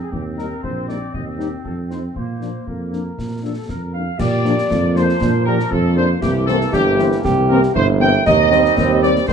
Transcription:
Already playing: woodwind section C4
0.01 trumpet section G#4
0.11 tuba D#2, trumpet section G4, concert bass drum
0.37 french horn section G3 A#3 D#4, trumpet section A#4, snare
0.63 tuba A#1, trumpet section C5, concert bass drum
0.87 french horn section G3 A#3 D#4, trumpet section D5, snare
1.14 tuba D#2, trumpet section D#5, concert bass drum
1.38 french horn section G3 C4 D#4, trumpet section G4, snare
1.64 tuba F2, trumpet section A4, concert bass drum
1.90 french horn section F3 C4 D#4, trumpet section C5, snare
2.15 tuba A#2, woodwind section A#3, trumpet section C5, concert bass drum
2.40 french horn section F3 A#3 D4, snare
2.66 tuba F2, trumpet section A#4, concert bass drum
2.91 french horn section F3 A#3 D4, snare
3.18 tuba A#2, concert bass drum, snare
3.42 french horn section F3 A#3 D4, trumpet section A4, woodwind section A4
3.68 tuba F2, trumpet section A#4, woodwind section A#4, concert bass drum, snare
3.93 french horn section F3 A#3 D4, woodwind section F5, trumpet section F5
4.19 tuba A#2, trombone section F3 A#3, euphonium G4, woodwind section D5, trumpet section D5, concert bass drum, snare, crash
4.45 french horn section F3 A#3 D4, snare
4.58 snare
4.70 tuba F2, euphonium F4, concert bass drum, snare
4.95 french horn section F3 A#3 D4, trumpet section C5, woodwind section C5, snare
5.09 snare
5.20 tuba A#2, euphonium D4, concert bass drum, snare
5.45 french horn section F3 A#3 D4, euphonium G4, trumpet section A#4, woodwind section A#4
5.59 snare
5.71 tuba F2, euphonium F4, trumpet section A4, woodwind section A4, concert bass drum
5.96 french horn section F3 A#3 D4, woodwind section C5, trumpet section C5
6.22 tuba C2, trombone section E3 A#3, euphonium E4, woodwind section G4, trumpet section G4, concert bass drum, snare, crash
6.46 french horn section E3 A#3 C4, woodwind section A4, trumpet section A4, snare
6.61 snare
6.72 tuba G1, euphonium D4, woodwind section G4, trumpet section G4, concert bass drum, snare
6.99 french horn section E3 A#3 C4, euphonium E4, snare
7.12 snare
7.23 tuba C2, euphonium G4, concert bass drum, snare
7.49 french horn section E3 A#3 C4, woodwind section A#4, trumpet section A#4
7.63 snare
7.74 tuba G1, euphonium E4, woodwind section C5, trumpet section C5, concert bass drum
8.01 french horn section E3 A#3 C4, trumpet section G5, woodwind section G5
8.26 tuba D#2, trombone section G3 C4, euphonium D#4, trumpet section D#5, woodwind section D#5, concert bass drum, snare, crash
8.51 french horn section G3 A#3 C4, snare
8.65 snare
8.77 tuba D#2, euphonium C4, concert bass drum, snare
9.02 french horn section G3 A#3 C4, trumpet section D5, woodwind section D5, snare
9.16 snare
9.27 tuba D#2, trombone section G3 C4, euphonium D#4, woodwind section C5, trumpet section C5, concert bass drum, snare

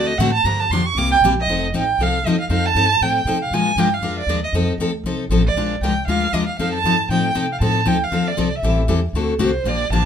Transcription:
Already playing: upright bass D2, steel-string acoustic guitar D3 A3 C4 F#4 A4
0.07 violin D#5
0.18 upright bass A2, steel-string acoustic guitar D3 A3 C4 F#4 A4, violin F#5
0.33 violin A5
0.44 upright bass G2, steel-string acoustic guitar D3 F3 A#3 D4 G4, violin A#5
0.59 violin A5
0.70 upright bass F2, steel-string acoustic guitar D3 F3 A#3 D4 G4, violin C6
0.86 violin C#6
0.95 upright bass C2, steel-string acoustic guitar C3 G3 A#3 E4 G4, violin D6
1.12 violin G5
1.21 upright bass A#1, steel-string acoustic guitar C3 G3 A#3 E4
1.25 steel-string acoustic guitar G4
1.41 violin D#5
1.47 upright bass F1, steel-string acoustic guitar F3 C4 D#4 A4
1.73 upright bass A1, steel-string acoustic guitar F3 C4 D#4 A4, violin G5
1.98 upright bass C2, steel-string acoustic guitar F3 C4 D#4 A4
2.03 violin F5
2.24 upright bass D#2, steel-string acoustic guitar F3 C4 A4, violin D#5
2.28 steel-string acoustic guitar D#4
2.40 violin F5
2.49 upright bass F2, steel-string acoustic guitar F3 C4 D#4 A4, violin F5
2.66 violin A5
2.75 upright bass G2, steel-string acoustic guitar F3 C4 D#4 A4
3.01 upright bass A2, steel-string acoustic guitar F3 C4 D#4 A4, violin G5
3.25 upright bass C3, steel-string acoustic guitar F3 C4 D#4 A4
3.42 violin F5
3.51 upright bass A#2, steel-string acoustic guitar F3 G#3 D4 F4 A#4, violin G#5
3.76 upright bass G2, steel-string acoustic guitar F3 G#3 D4 F4 A#4, violin G5
3.94 violin F5
4.01 upright bass F2, steel-string acoustic guitar F3 G#3 D4 F4 A#4
4.20 violin D5
4.27 upright bass D#2, steel-string acoustic guitar F3 G#3 D4 F4 A#4
4.44 violin D#5
4.53 upright bass F2, steel-string acoustic guitar F3 C4 D#4 A4
4.78 upright bass D2, steel-string acoustic guitar F3 C4 D#4 A4
5.04 upright bass C2, steel-string acoustic guitar F3 C4 D#4 A4
5.30 upright bass A1, steel-string acoustic guitar F3 C4 D#4 A4
5.47 violin D5
5.55 upright bass A#1, steel-string acoustic guitar F3 G#3 D4 F4 A#4
5.81 upright bass C2, steel-string acoustic guitar F3 G#3 D4 F4 A#4, violin G5
6.07 upright bass D2, steel-string acoustic guitar F3 G#3 D4 F4 A#4, violin F5
6.33 upright bass D#2, steel-string acoustic guitar F3 G#3 D4 F4 A#4, violin D#5
6.46 violin F5
6.59 upright bass F2, steel-string acoustic guitar F3 C4 D#4 A4, violin F5
6.74 violin A5
6.84 upright bass G2, steel-string acoustic guitar F3 C4 D#4 A4
7.09 upright bass A2, steel-string acoustic guitar F3 C4 D#4 A4, violin G5
7.35 upright bass C3, steel-string acoustic guitar F3 C4 D#4 A4
7.52 violin F5
7.60 upright bass A2, steel-string acoustic guitar F3 C4 D#4 A4, violin A5
7.86 upright bass D2, steel-string acoustic guitar F3 C4 D#4 A4, violin G5
8.04 violin F5
8.11 upright bass D#2, steel-string acoustic guitar F3 C4 D#4 A4
8.27 violin D5
8.37 upright bass C2, steel-string acoustic guitar F3 C4 D#4 A4
8.56 violin E5
8.63 upright bass A1, steel-string acoustic guitar E3 G3 C4 E4 A4
8.88 upright bass E2, steel-string acoustic guitar E3 G3 C4 E4 A4
9.13 upright bass D2, steel-string acoustic guitar D3 A3 C4 F#4 A4
9.39 upright bass C2, steel-string acoustic guitar D3 A3 C4 F#4 A4, violin C5
9.64 upright bass A#1, steel-string acoustic guitar D3 F3 A#3 D4 G4
9.69 violin D5
9.90 upright bass A1, steel-string acoustic guitar D3 F3 A#3 D4 G4, violin A5

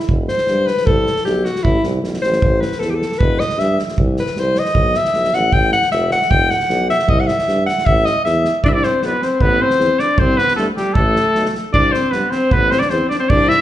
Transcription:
0.08 tuba E1, kick
0.28 alto saxophone C5, snare
0.38 snare
0.47 tuba G2, snare
0.67 alto saxophone B4, snare
0.77 snare
0.86 tuba C2, alto saxophone A4, kick
1.07 snare
1.16 snare
1.25 tuba B1, alto saxophone G4, snare
1.44 alto saxophone F#4, snare
1.55 snare
1.64 tuba A1, alto saxophone E4, kick
1.83 tuba C2, snare
2.02 tuba B1, snare
2.14 snare
2.22 tuba A1, alto saxophone C5, snare
2.33 snare
2.42 tuba A1, kick
2.61 alto saxophone B4, snare
2.72 snare
2.79 tuba E2, alto saxophone A4, snare
2.90 alto saxophone G4
2.95 alto saxophone A4
3.02 snare
3.12 snare
3.18 tuba E1, alto saxophone B4, kick
3.40 alto saxophone D#5, snare
3.50 snare
3.58 tuba G2, alto saxophone E5, snare
3.79 snare
3.88 snare
3.98 tuba C2, kick
4.17 alto saxophone B4, snare
4.26 snare
4.36 tuba C2, alto saxophone C5, snare
4.55 alto saxophone D#5, snare
4.65 snare
4.74 tuba B1, kick
4.94 alto saxophone E5, snare
5.05 snare
5.14 tuba B1, snare
5.24 snare
5.33 tuba A1, alto saxophone F#5, snare
5.52 tuba A1, alto saxophone G5, kick
5.72 alto saxophone F#5, snare
5.82 snare
5.91 tuba F1, alto saxophone E5, snare
6.11 alto saxophone F#5, snare
6.22 snare
6.30 tuba E1, alto saxophone G5, kick
6.50 alto saxophone F#5, snare
6.60 snare
6.70 tuba B1, snare
6.89 alto saxophone E5, snare
6.99 snare
7.08 tuba C2, alto saxophone D#5, kick
7.20 alto saxophone F#5
7.27 alto saxophone E5, snare
7.39 snare
7.48 tuba G2, snare
7.66 alto saxophone F#5, snare
7.78 snare
7.86 tuba A1, alto saxophone E5, kick
8.05 alto saxophone D#5, snare
8.25 tuba E2, alto saxophone E5, snare
8.45 snare
8.64 tuba C2, alto saxophone D4 E4, trumpet D5, kick
8.68 trumpet E5
8.73 alto saxophone D4, trumpet D5
8.83 alto saxophone C4, trumpet C5, snare
9.02 tuba B1, alto saxophone B3, trumpet B4, snare
9.22 alto saxophone C4, trumpet C5, snare
9.41 tuba A1, alto saxophone B3, trumpet B4, kick
9.61 alto saxophone C4, trumpet C5
9.70 snare
9.79 tuba E2, snare
9.99 alto saxophone D4, trumpet D5, snare
10.18 tuba C2, alto saxophone C4, trumpet C5, kick
10.37 alto saxophone B3, trumpet B4, snare
10.48 snare
10.56 tuba G2, trumpet A4, snare
10.60 alto saxophone A3
10.76 alto saxophone G3, trumpet G4, snare
10.93 tuba A1, alto saxophone A3, trumpet A4, kick
11.16 snare
11.35 tuba B1, snare
11.46 snare
11.55 snare
11.73 tuba C2, alto saxophone D4, trumpet D5, kick
11.92 alto saxophone C4, trumpet C5, snare
12.11 tuba G2, alto saxophone B3, trumpet B4, snare
12.30 alto saxophone C4, trumpet C5, snare
12.51 tuba A1, alto saxophone B3, trumpet B4, kick
12.71 alto saxophone C4, trumpet C5, snare
12.79 alto saxophone D4, trumpet D5, snare
12.90 tuba E2, alto saxophone C4, trumpet C5, snare
13.09 alto saxophone D4, trumpet D5, snare
13.19 alto saxophone C4, trumpet C5
13.29 tuba C2, alto saxophone D4, trumpet D5, kick
13.48 alto saxophone E4, trumpet E5, snare

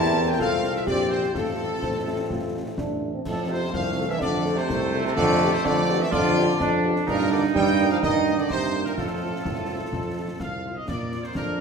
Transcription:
Already playing: tuba E2, trombone section A#3 C4, french horn section C4 G4 A#4, euphonium E4, trumpet section A5
0.27 trumpet section G5
0.38 tuba C2, trombone section A3 C4, french horn section C4 F4 A4, euphonium F4, trumpet section F5, concert bass drum, snare
0.64 snare
0.75 trumpet section E5, snare
0.86 tuba A#1, trombone section E3 C4, french horn section C4 E4 G4, euphonium G4, trumpet section D5, concert bass drum, snare
1.09 trumpet section C5
1.23 snare
1.34 tuba A1, trombone section F3 C4, french horn section C4 F4 A4, euphonium F4, trumpet section A4, concert bass drum, snare, crash
1.82 tuba A1, euphonium C4, concert bass drum, snare
2.06 euphonium E4
2.30 tuba A1, euphonium F4, concert bass drum, snare
2.66 euphonium E4
2.78 tuba A1, euphonium D4, concert bass drum, snare
3.14 euphonium C4
3.25 tuba F2, euphonium A2, trumpet section A4, concert bass drum, snare, crash
3.48 euphonium C3, french horn section C4 F4 A4, trumpet section C5
3.72 tuba C2, euphonium F3, trombone section A3, trumpet section F5, concert bass drum, snare
3.97 french horn section C4 F4 A4
4.07 euphonium E3, trumpet section E5
4.19 tuba F2, euphonium D3, trumpet section D5, concert bass drum, snare
4.45 french horn section C4 F4 A4, snare
4.56 euphonium C3, trumpet section C5, snare
4.68 tuba C2, concert bass drum, snare
4.94 french horn section C4 F4 A4
5.05 euphonium C3, trumpet section C5, snare
5.15 tuba F2, euphonium D3, trumpet section D5, concert bass drum, snare, crash
5.41 french horn section B3 F4 G4
5.51 euphonium C3, trumpet section C5
5.64 tuba F2, euphonium D3, trumpet section D5, concert bass drum, snare
5.88 french horn section B3 F4 G4
6.00 euphonium E3, trumpet section E5
6.11 tuba F2, euphonium D3, trombone section F4, trumpet section D5, concert bass drum, snare
6.36 french horn section B3 F4 G4, snare
6.48 snare
6.60 tuba F2, trombone section D4, concert bass drum, snare
6.83 french horn section B3 F4 G4
6.96 snare
7.07 tuba G2, euphonium A#2, trombone section D#4, trumpet section A#4, concert bass drum, snare, crash
7.30 euphonium D3, french horn section A#3 D#4 A#4, trumpet section D5
7.54 tuba G2, euphonium G3, trumpet section G5, concert bass drum, snare
7.79 french horn section A#3 D#4 A#4
7.90 euphonium F3, trumpet section F5
8.01 tuba G2, euphonium D#3, trumpet section D#5, concert bass drum, snare
8.26 french horn section A#3 D#4 A#4, snare
8.38 euphonium D3, trumpet section D5, snare
8.50 tuba G2, euphonium C3, trumpet section C5, concert bass drum, snare
8.74 french horn section A#3 D#4 A#4
8.85 euphonium A#2, trumpet section A#4, snare
8.96 tuba F2, euphonium A2, trombone section F4, trumpet section A4, concert bass drum, snare, crash
9.21 french horn section C4 F4
9.45 tuba C2, concert bass drum, snare
9.69 french horn section C4 F4
9.93 tuba F2, concert bass drum, snare
10.17 french horn section C4 F4
10.39 tuba C2, trumpet section F5, concert bass drum, snare
10.65 french horn section C4 F4
10.76 trumpet section D#5
10.86 tuba A#2, trombone section F3 A#3, trumpet section D5, concert bass drum, snare, crash
11.11 french horn section A#3 F4, snare
11.23 trumpet section C5, snare
11.34 tuba F2, euphonium D4, trumpet section A#4, concert bass drum, snare

